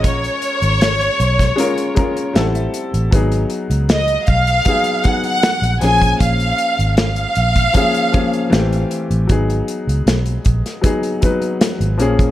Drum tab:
HH |xxxxxxxxxxxxxxxx|xxxxxxxxxxxxxxxx|xxxxxxxxxxxxxxxx|xxxxxxxxxxxxxxxx|
SD |----o--o----o---|----o-------o-o-|----o-------o---|----o--o----o---|
BD |o------o--o-----|o-----o-o-o----o|o------oo-o-----|o-----o-o-o----o|